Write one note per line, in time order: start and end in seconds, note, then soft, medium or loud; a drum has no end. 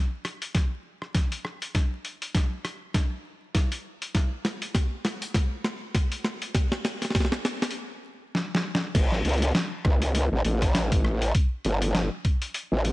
0.25 cross-stick medium
0.25 closed hi-hat soft
0.42 closed hi-hat medium
0.55 kick medium
0.55 snare medium
0.55 closed hi-hat medium
1.02 cross-stick soft
1.15 kick loud
1.15 snare medium
1.15 closed hi-hat medium
1.32 closed hi-hat medium
1.45 cross-stick medium
1.62 closed hi-hat medium
1.75 kick loud
1.75 snare medium
1.75 closed hi-hat medium
2.05 closed hi-hat soft
2.22 closed hi-hat medium
2.35 kick loud
2.35 snare medium
2.35 closed hi-hat medium
2.65 cross-stick medium
2.65 closed hi-hat soft
2.94 kick loud
2.94 snare medium
2.94 closed hi-hat medium
3.55 kick loud
3.55 snare medium
3.55 closed hi-hat medium
3.72 closed hi-hat medium
4.02 closed hi-hat medium
4.15 kick medium
4.15 snare medium
4.15 closed hi-hat medium
4.45 snare medium
4.45 closed hi-hat soft
4.62 closed hi-hat medium
4.75 kick loud
4.75 snare medium
4.75 closed hi-hat medium
5.05 snare medium
5.05 closed hi-hat soft
5.22 closed hi-hat medium
5.34 kick medium
5.34 snare medium
5.34 closed hi-hat medium
5.64 snare medium
5.95 kick loud
5.95 snare medium
5.95 closed hi-hat medium
6.12 closed hi-hat medium
6.24 snare medium
6.42 closed hi-hat medium
6.55 kick loud
6.55 snare medium
6.55 closed hi-hat medium
6.72 snare medium
6.85 snare medium
6.85 closed hi-hat soft
7.02 snare soft
7.02 closed hi-hat medium
7.05 snare soft
7.11 snare medium
7.15 kick loud
7.15 snare medium
7.15 closed hi-hat medium
7.20 snare medium
7.25 snare medium
7.32 snare medium
7.45 snare loud
7.45 closed hi-hat soft
7.62 snare medium
7.62 closed hi-hat medium
7.71 closed hi-hat soft
8.35 snare medium
8.55 snare medium
8.75 snare loud
8.95 9.23 A1 medium
8.95 kick loud
8.95 closed hi-hat medium
8.95 crash loud
9.12 snare soft
9.25 9.53 C#2 loud
9.25 closed hi-hat soft
9.29 closed hi-hat soft
9.33 closed hi-hat soft
9.38 closed hi-hat soft
9.42 closed hi-hat medium
9.45 closed hi-hat soft
9.48 closed hi-hat soft
9.51 snare loud
9.51 closed hi-hat soft
9.55 closed hi-hat medium
9.85 10.29 C#2 medium
9.85 kick loud
9.85 cross-stick medium
10.02 closed hi-hat medium
10.15 closed hi-hat medium
10.32 10.43 A1 medium
10.45 11.33 A1 medium
10.45 closed hi-hat soft
10.62 kick medium
10.62 cross-stick soft
10.62 closed hi-hat medium
10.75 snare loud
10.75 closed hi-hat medium
10.92 kick loud
10.92 closed hi-hat medium
11.05 cross-stick medium
11.22 closed hi-hat medium
11.35 kick loud
11.35 closed hi-hat medium
11.65 12.09 G1 loud
11.65 closed hi-hat soft
11.82 closed hi-hat medium
11.95 snare loud
11.95 closed hi-hat medium
12.25 kick loud
12.25 closed hi-hat soft
12.42 closed hi-hat medium
12.54 closed hi-hat medium
12.72 12.92 A1 loud
12.85 closed hi-hat soft